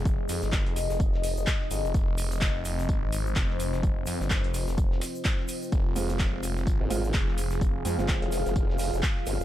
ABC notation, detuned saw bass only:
X:1
M:4/4
L:1/16
Q:"Swing 16ths" 1/4=127
K:Fm
V:1 name="Detuned saw bass" clef=bass
z2 F,, G,,,2 F,,,2 F,,,4 F,,, z2 G,,, F,,, | z2 F,,,3 F,,,3 A,,, A,,,3 F,,,4 | z2 F,, G,,,2 F,,,2 F,,,3 z6 | F,,,2 F,,,3 F,,,3 A,,, z3 F,,,4 |
F,,,2 F,, G,,,2 z8 z2 F,,, |]